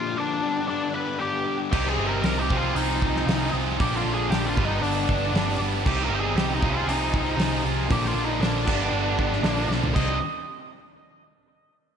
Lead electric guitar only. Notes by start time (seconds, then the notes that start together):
Already playing: F4 F5
0.18 D4 D5
0.68 D4 D5
0.94 B4 B5
1.20 G4 G5
1.72 G4 G5
1.88 G#4 G#5
2.07 A#4 A#5
2.22 A#4 A#5
2.39 G4 G5
2.57 F4 F5
2.75 D#4 D#5
3.81 G4 G5
3.96 F4 F5
4.14 G#4 G#5
4.30 G4 G5
4.47 F4 F5
4.65 D#4 D#5
4.82 D4 D5
5.86 G4 G5
6.03 A#4 A#5
6.14 G5
6.19 G#4 G#5
6.37 G4 G5
6.54 D#4 D#5
6.70 F4 F5
6.88 D#4 D#5
7.91 G4 G5
8.07 F4 F5
8.24 D#4 D#5
8.41 D4 D5
9.95 D#5